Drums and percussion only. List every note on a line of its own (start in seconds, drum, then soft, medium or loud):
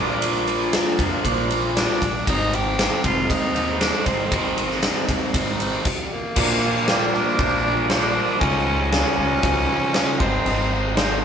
0.22 ride medium
0.47 ride medium
0.73 snare loud
0.73 ride loud
0.99 kick medium
0.99 ride medium
1.25 kick medium
1.25 ride medium
1.51 ride medium
1.77 snare loud
1.77 ride medium
2.02 kick medium
2.02 ride medium
2.27 kick loud
2.27 ride medium
2.53 ride medium
2.79 snare loud
2.79 ride medium
3.04 kick medium
3.04 ride medium
3.30 kick medium
3.30 ride medium
3.56 ride medium
3.81 snare loud
3.81 ride medium
4.06 kick medium
4.06 ride medium
4.32 kick loud
4.32 ride medium
4.58 ride medium
4.70 snare soft
4.83 snare loud
4.83 ride loud
5.09 kick medium
5.09 ride medium
5.34 kick medium
5.34 ride loud
5.60 ride medium
5.85 kick loud
5.85 crash medium
6.36 kick loud
6.36 crash loud
6.36 crash medium
6.88 snare loud
6.88 crash medium
7.13 snare soft
7.39 kick loud
7.39 crash medium
7.90 snare loud
7.90 crash medium
8.41 kick loud
8.41 crash medium
8.92 snare loud
8.92 crash medium
9.43 kick loud
9.43 crash medium
9.94 snare loud
9.94 crash medium
10.20 kick loud
10.46 crash medium
10.97 snare loud
10.97 crash medium